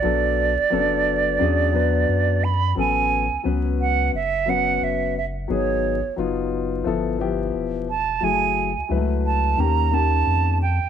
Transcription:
X:1
M:4/4
L:1/16
Q:"Swing 16ths" 1/4=88
K:A
V:1 name="Flute"
d12- d2 b2 | g4 z2 f2 e2 f2 e2 e2 | c4 z8 z2 a2 | g4 z2 a2 ^a2 =a4 =g2 |]
V:2 name="Grand piano"
[F,B,DA]2 z2 [F,B,CDA]4 [F,CDG]2 [F,B,DB]4 z2 | [F,B,CA]2 z2 [F,B,CB]4 z2 [F,B,CB]4 z2 | [F,B,^DG]2 z2 [F,B,D^E]4 [=F,B,=EA]2 [F,B,E=G]4 z2 | [F,A,EG]2 z2 [F,G,A,EB]4 [^D,^A,C=G]2 [D,A,CG]4 z2 |]
V:3 name="Analog synth bass" clef=bass
B,,,3 F,,, F,,,4 E,,4 F,,4 | A,,,3 C,, C,,4 F,,,4 F,,,4 | G,,,3 F,,, F,,,4 =G,,,4 E,,,4 | F,,,3 C,, C,,4 ^D,,4 ^E,,3 E,, |]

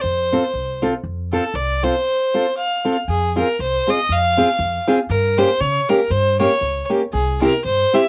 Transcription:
X:1
M:2/4
L:1/16
Q:"Swing" 1/4=118
K:F
V:1 name="Fiddle"
c6 z2 | z2 A2 d2 c2- | c4 f3 z | [K:Fm] A2 B2 c2 e2 |
f6 z2 | B2 c2 d2 B2 | c2 d4 z2 | A2 B2 c2 =e2 |]
V:2 name="Steel-string acoustic guitar"
z2 [CFA]2 z2 [CFA]2 | z2 [CFA]2 z2 [CFA]2 | z2 [CFA]2 z2 [CFA]2 | [K:Fm] z2 [CFA]2 z2 [CFA]2 |
z2 [CFA]2 z2 [CFA]2 | z2 [B,DG]2 z2 [B,DG]2 | z2 [B,DG]2 z2 [B,DG]2 | z2 [C=EG]2 z2 [CEG]2 |]
V:3 name="Upright bass" clef=bass
F,,4 C,,4 | F,,4 C,,4 | z8 | [K:Fm] F,,4 C,,2 z2 |
F,,4 F,,2 z2 | G,,4 D,2 z2 | G,,4 D,,2 z2 | C,,4 G,,2 z2 |]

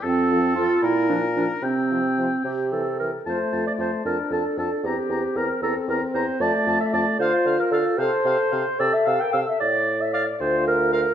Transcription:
X:1
M:6/8
L:1/16
Q:3/8=76
K:F
V:1 name="Oboe"
A6 B6 | g8- g z3 | a2 a2 a2 a2 a2 a2 | b2 b2 b2 b2 b2 b2 |
a2 a2 a2 f2 f2 f2 | f2 f2 f2 e'2 e'2 e'2 | z4 f z4 z f z |]
V:2 name="Flute"
z2 A2 A2 z2 B2 B2 | z2 c2 c2 G2 A2 B2 | c3 d c2 B2 A2 A2 | G4 B2 A2 B2 c2 |
d3 e d2 c3 B A2 | c6 d e f g f e | d3 e d2 c2 B2 B2 |]
V:3 name="Clarinet"
C4 F2 E2 D2 D2 | C6 G2 A2 B2 | c3 d c2 B2 A2 A2 | G4 B2 A2 B2 c2 |
d3 e d2 c3 B A2 | c6 d e f g f e | d3 e d2 c2 B2 B2 |]
V:4 name="French horn"
z2 F,2 F,2 z2 F,2 F,2 | z2 F,2 F,2 z2 E,2 E,2 | A,6 D6 | C6 C6 |
A,6 F6 | A6 A3 B A2 | z6 F6 |]
V:5 name="Bassoon" clef=bass
F,,6 B,,6 | C,6 C,6 | F,,2 F,,2 F,,2 F,,2 F,,2 F,,2 | E,,2 E,,2 E,,2 E,,2 E,,2 E,,2 |
F,,2 F,,2 F,,2 D,2 D,2 D,2 | C,2 C,2 C,2 C,2 C,2 C,2 | A,,6 D,,6 |]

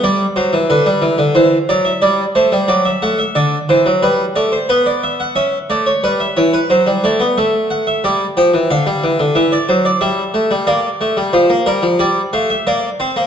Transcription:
X:1
M:4/4
L:1/16
Q:1/4=90
K:C
V:1 name="Harpsichord"
d2 c2 B4 c2 d e d2 c2 | d e ^f e d2 c2 B2 d c B d e f | e2 d ^c B e c B =c2 d2 e2 ^f e | d2 g2 f4 e d c d e4 |
[K:Gdor] d4 c2 B2 d2 f e d2 c2 |]
V:2 name="Harpsichord" clef=bass
G,2 ^F, E, D, G, E, D, E,2 F,2 G,2 A, G, | ^F,2 A,2 D,2 E, F, G,2 A,2 B,4 | ^C2 A,2 G,2 E,2 ^F, G, A, B, A,4 | G,2 F, E, D, G, E, D, E,2 ^F,2 G,2 A, G, |
[K:Gdor] B,2 A, G, F, B, G, F, G,2 A,2 B,2 C B, |]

